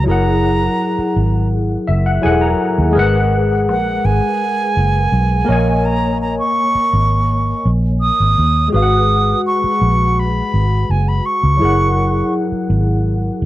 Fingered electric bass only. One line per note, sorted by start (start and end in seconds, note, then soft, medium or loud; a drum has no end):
0.08 0.67 F#1 loud
0.99 muted fingered electric bass stroke soft
1.16 1.76 G#1 medium
1.89 2.18 F#1 medium
2.25 2.54 E1 medium
2.78 2.98 D#2 medium
2.96 3.69 G#1 loud
3.69 3.98 A#1 medium
4.05 4.19 G#1 medium
4.77 5.06 F#1 medium
5.12 5.42 B1 medium
5.49 6.38 A#1 medium
6.75 muted fingered electric bass stroke soft
6.93 7.53 G#1 medium
7.65 8.10 A#1 medium
8.20 8.34 G#1 medium
8.38 8.67 D#2 medium
8.74 9.33 G#1 loud
9.64 muted fingered electric bass stroke soft
9.81 10.41 A#1 medium
10.54 10.83 G#1 medium
10.90 11.19 F#1 medium
11.43 11.58 C#2 medium
11.62 12.21 F#1 medium
12.52 muted fingered electric bass stroke soft
12.70 13.29 G#1 medium
13.42 13.45 F#1 medium